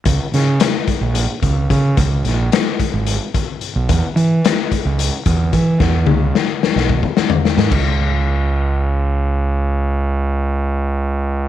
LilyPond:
<<
  \new Staff \with { instrumentName = "Fingered electric bass" } { \clef bass \time 7/8 \key cis \dorian \tempo 4 = 110 cis,16 r16 cis8 r8. ais,,8 r16 cis,8 cis8 | cis,8 ais,,8 r8. gis,,8 r4 b,,16 | e,16 r16 e8 r8. cis,8 r16 e,8 e8 | e,8 cis,8 r8. b,,8 r4 gis,16 |
cis,2.~ cis,8~ | cis,2.~ cis,8 | }
  \new DrumStaff \with { instrumentName = "Drums" } \drummode { \time 7/8 <hh bd>8 <hh sn>8 <hh sn>8 <hh bd>8 hh8 <hh bd>8 <hh bd>8 | <hh bd>8 <hh sn>8 <hh sn>8 <hh bd>8 hh8 <hh bd>8 hh8 | <hh bd>8 hh8 <hh sn>8 <hh bd>8 hh8 <hh bd>8 <hh bd>8 | <bd sn>8 tommh8 sn8 sn16 sn16 bd16 bd16 sn16 tomfh16 sn16 sn16 |
<cymc bd>4 r4 r4. | r4 r4 r4. | }
>>